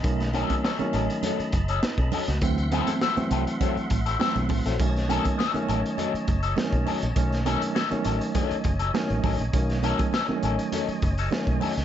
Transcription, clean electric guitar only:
X:1
M:4/4
L:1/16
Q:1/4=101
K:Bmix
V:1 name="Clean electric guitar"
z2 [F,CDA] z [F,CDA] z [F,CDA] z [F,CDA] z2 [F,CDA] z2 [F,CDA] z | z2 [F,=CEA] z [F,CEA] z [F,CEA] z [F,CEA] z2 [F,CEA] [F,CEA] z2 [F,CEA] | z2 [F,CDA] z [F,CDA] z [F,CDA] z [F,CDA] z2 [F,CDA] z2 [F,CDA] z | z2 [F,CDA] z [F,CDA] z [F,CDA] z [F,CDA] z2 [F,CDA] z2 [F,CDA] z |
z2 [F,CDA] z [F,CDA] z [F,CDA] z [F,CDA] z2 [F,CDA] z2 [F,CDA] z |]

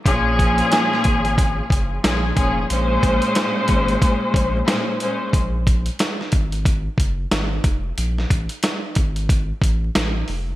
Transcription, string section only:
X:1
M:4/4
L:1/16
Q:"Swing 16ths" 1/4=91
K:Fphr
V:1 name="String section"
[B,,F,DA]8- [B,,F,DA]3 z [B,,F,DA]2 [B,,F,DA]2 | [B,,A,Dc]8- [B,,A,Dc]3 z [B,,A,Dc]2 [B,,A,Dc]2 | z16 | z16 |]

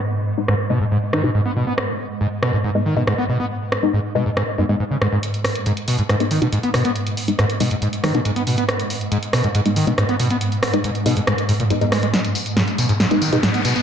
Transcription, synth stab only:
X:1
M:4/4
L:1/16
Q:1/4=139
K:G#m
V:1 name="Synth stab"
z3 [G,B,D] z2 [G,B,D] z3 [G,B,D] [G,B,D]4- [G,B,D]- | [G,B,D]8- [G,B,D] [G,B,D] z [G,B,D] z4 | z3 [G,B,D] z2 [G,B,D] z3 [G,B,D] [G,B,D]4- [G,B,D] | z8 z [G,B,D] z [G,B,D] z4 |
z3 [G,B,D] z2 [G,B,D] z3 [G,B,D] [G,B,D]4- [G,B,D]- | [G,B,D]8- [G,B,D] [G,B,D] z [G,B,D] z4 | z3 [G,B,D] z2 [G,B,D] z4 z [G,B,D] [G,B,D] z2 | z8 z [G,B,D] z [G,B,D] z4 |]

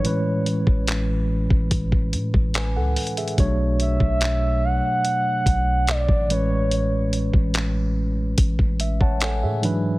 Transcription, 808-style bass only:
X:1
M:4/4
L:1/16
Q:1/4=72
K:A
V:1 name="808-style bass" clef=bass
z3 A,,,4 A,,,3 A,, A,,,2 C,, z2 | B,,,3 B,,,4 z3 B,,,3 A,,,3- | A,,,3 A,,,4- A,,, A,,, A,,,2 A,,,2 A,, z2 |]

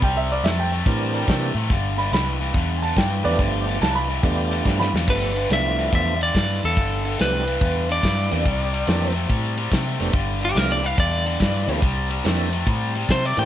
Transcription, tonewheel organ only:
X:1
M:4/4
L:1/8
Q:"Swing" 1/4=142
K:Gmix
V:1 name="Tonewheel organ"
z4 [E,CDG_B]2 [E,_B,CDG] z | z6 z [F,A,B,DG]- | [F,A,B,DG]2 z2 [A,B,DFG]2 [F,A,B,DG] z | [F,A,B,DG] z [F,A,B,DF]3 z3 |
z2 [F,A,B,DG] z4 [E,_B,CDG] | z2 [E,_B,CDG] z4 [F,A,=B,DG] | z2 [F,A,B,DG] z4 [E,_B,CDG] | z2 [E,_B,CDG] z4 [E,B,CDG] |]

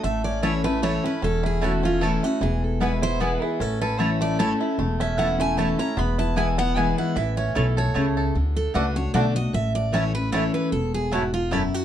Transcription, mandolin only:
X:1
M:3/4
L:1/8
Q:"Swing" 1/4=152
K:A
V:1 name="Mandolin"
z2 [A,Eca] z [A,Eca] z | z2 [A,Eca] z [A,Eca] z | z2 [B,EBg] z [B,EBg] z | z2 [A,Eca] z [A,Eca] z |
z2 [A,Eca] z [A,Eca] z | z2 [B,EBg] z [B,EBg] z | z2 [A,Eca] z [A,Eca] z | z2 [A,Fdf] z [A,Fdf] z |
z2 [A,Eca] z [A,Eca] z | z2 [A,Eca] z [A,Eca] z |]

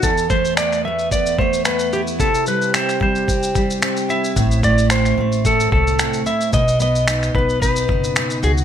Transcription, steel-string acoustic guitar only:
X:1
M:4/4
L:1/8
Q:"Swing 16ths" 1/4=111
K:Am
V:1 name="Steel-string acoustic guitar"
E,, A, B, A, B, A, B, E | C, G, C G, C G, C E | A,, A, C A, C A, C E | B,, B, ^D B, D B, D ^F |]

